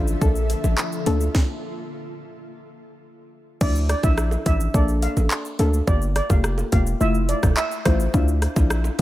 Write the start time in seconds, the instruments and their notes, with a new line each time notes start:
Already playing: 808-style bass A1, ambient pad D3 F3 A4 E5, synth stab D4 E4 F4
0.07 shaker
0.21 808-style bass A#1, synth stab A#3 D4 A4, kick, shaker
0.36 shaker
0.50 closed hi-hat, high bongo, shaker
0.64 808-style bass A1, high bongo, shaker
0.78 clap, shaker
0.92 shaker
1.06 808-style bass D2, synth stab A#3 D4 A4, closed hi-hat, high bongo, low bongo, shaker
1.21 shaker
1.35 kick, snare
3.61 808-style bass D2, synth stab F3 D4 E4, steel pan D5, kick, crash, shaker
3.75 shaker
3.89 steel pan D5, cross-stick, closed hi-hat, shaker
4.03 808-style bass A#1, synth stab F3 D4 E4, steel pan E5, kick, high bongo, shaker
4.18 cross-stick, shaker
4.31 high bongo, shaker
4.46 808-style bass A1, synth stab F3 D4 E4, steel pan E5, kick, closed hi-hat, low bongo, shaker
4.60 shaker
4.74 808-style bass A#1, synth stab A#3 D4 A4, steel pan D5, kick, shaker
4.88 shaker
5.02 steel pan F5, closed hi-hat, shaker
5.17 808-style bass A1, high bongo, shaker
5.31 clap, shaker
5.45 shaker
5.59 808-style bass D2, synth stab A#3 D4 A4, closed hi-hat, high bongo, low bongo, shaker
5.73 shaker
5.87 808-style bass G1, synth stab A#3 F4 G4, steel pan D5, kick, shaker
6.02 shaker
6.16 steel pan D5, cross-stick, closed hi-hat, shaker
6.30 808-style bass F1, synth stab A#3 F4 G4, steel pan F5, kick, high bongo, shaker
6.44 cross-stick, shaker
6.58 high bongo, shaker
6.72 808-style bass E1, synth stab A#3 F4 G4, steel pan F5, kick, closed hi-hat, low bongo, shaker
6.87 shaker
7.01 808-style bass F1, synth stab A3 E4 F4, steel pan E5, shaker
7.15 shaker
7.29 steel pan D5, closed hi-hat, shaker
7.43 808-style bass E1, kick, cross-stick, high bongo, shaker
7.57 steel pan E5, clap, shaker
7.71 shaker
7.85 808-style bass A1, synth stab A3 E4 F4, steel pan C5, kick, cross-stick, closed hi-hat, high bongo, low bongo, shaker
8.00 shaker
8.14 808-style bass D2, synth stab D4 E4 F4, kick, shaker
8.28 shaker
8.42 cross-stick, closed hi-hat, shaker
8.56 808-style bass A#1, synth stab D4 E4 F4, kick, high bongo, shaker
8.70 cross-stick, shaker
8.84 high bongo, shaker
8.99 synth stab D4, low bongo